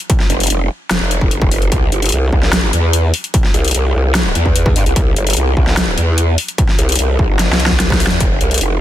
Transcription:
0.10 kick, closed hi-hat
0.20 snare
0.30 F1, closed hi-hat
0.40 closed hi-hat
0.43 closed hi-hat
0.47 F1, closed hi-hat
0.50 closed hi-hat
0.91 F1, snare, closed hi-hat
1.01 F1
1.11 closed hi-hat
1.21 F1, kick
1.31 closed hi-hat
1.42 kick
1.52 F1, open hi-hat
1.62 closed hi-hat
1.72 C2, kick, closed hi-hat
1.92 G1, closed hi-hat
2.02 closed hi-hat
2.06 closed hi-hat
2.09 closed hi-hat
2.12 C2, closed hi-hat
2.33 C2, kick
2.43 snare
2.53 snare, closed hi-hat
2.73 E2, closed hi-hat
2.93 closed hi-hat
3.14 open hi-hat
3.24 closed hi-hat
3.34 kick, closed hi-hat
3.44 snare
3.54 C2, closed hi-hat
3.65 closed hi-hat
3.68 closed hi-hat
3.71 C2, closed hi-hat
3.75 closed hi-hat
3.95 C2
4.15 snare, closed hi-hat
4.35 E2, closed hi-hat
4.46 kick
4.56 closed hi-hat
4.66 kick
4.76 G2, open hi-hat
4.86 C2, closed hi-hat
4.96 C2, kick, closed hi-hat
5.16 G1, closed hi-hat
5.27 closed hi-hat
5.30 closed hi-hat
5.33 C2, closed hi-hat
5.37 closed hi-hat
5.57 C2, kick
5.67 snare
5.77 snare, closed hi-hat
5.98 E2, closed hi-hat
6.18 closed hi-hat
6.38 open hi-hat
6.48 closed hi-hat
6.58 kick, closed hi-hat
6.69 snare
6.79 C2, closed hi-hat
6.89 closed hi-hat
6.92 closed hi-hat
6.96 closed hi-hat
6.99 C2, closed hi-hat
7.19 A#1, kick
7.29 G1
7.39 snare, closed hi-hat
7.50 C2, snare
7.60 closed hi-hat
7.66 kick, snare
7.80 snare, closed hi-hat
7.90 kick, snare
8.00 open hi-hat
8.07 E2, snare, closed hi-hat
8.20 F1, kick, closed hi-hat
8.41 C2, closed hi-hat
8.51 closed hi-hat
8.54 closed hi-hat
8.58 F1, closed hi-hat
8.61 closed hi-hat

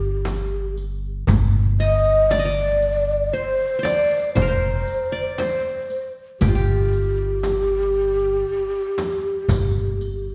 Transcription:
Already playing: G1 G4
0.25 riq, darbuka tek, frame drum
0.77 riq, darbuka ka
1.27 G1, riq, darbuka dum, frame drum
1.80 D#5
2.30 D5, riq, darbuka tek, frame drum
2.39 D#5
2.45 D5
2.82 riq
3.33 C5
3.79 C5
3.83 D5, riq, darbuka tek, frame drum
4.35 F1 C5, riq, darbuka dum, frame drum
4.42 A#4
4.48 C5
4.87 riq, darbuka ka
5.12 D5
5.38 C5, riq, darbuka tek, frame drum
5.90 riq, darbuka ka
6.40 G1 G4, riq, frame drum, darbuka dum
6.48 F4
6.55 G4
6.93 riq, darbuka ka
7.43 riq, darbuka tek, frame drum
8.98 riq, darbuka tek, frame drum
9.48 G1, riq, darbuka dum, frame drum
10.01 riq, darbuka ka

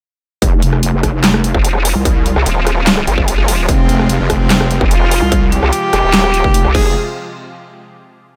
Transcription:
0.42 F1 C3 F3 G#3 F4, kick, closed hi-hat
0.62 F1, closed hi-hat
0.73 cross-stick
0.83 F1, closed hi-hat
0.93 F1
1.03 kick, cross-stick, closed hi-hat
1.24 snare, clap, closed hi-hat
1.34 cross-stick
1.44 closed hi-hat
1.55 F1, kick
1.65 closed hi-hat
1.75 cross-stick
1.85 open hi-hat
1.95 C2
2.05 kick, closed hi-hat
2.26 closed hi-hat
2.36 C2, cross-stick
2.46 D#1, closed hi-hat
2.67 cross-stick, closed hi-hat
2.87 snare, clap, closed hi-hat
2.97 cross-stick
3.07 G1, closed hi-hat
3.18 kick
3.28 closed hi-hat
3.38 cross-stick
3.48 open hi-hat
3.69 F1 C4, kick, closed hi-hat
3.89 F1, closed hi-hat
3.99 cross-stick
4.09 F1, closed hi-hat
4.20 F1
4.30 C4, kick, cross-stick, closed hi-hat
4.50 snare, clap, closed hi-hat
4.61 cross-stick
4.71 closed hi-hat
4.81 F1, kick
4.91 F4, closed hi-hat
5.01 cross-stick
5.11 open hi-hat
5.22 C2
5.32 kick, closed hi-hat
5.52 G4, closed hi-hat
5.63 C2, cross-stick
5.73 closed hi-hat
5.93 F1, cross-stick, closed hi-hat
6.03 D#1
6.13 snare, clap, closed hi-hat
6.24 cross-stick
6.34 closed hi-hat
6.44 F1, kick
6.54 closed hi-hat
6.65 C2, cross-stick
6.75 F1 C3 F3 G#3 F4 G#4, kick, crash

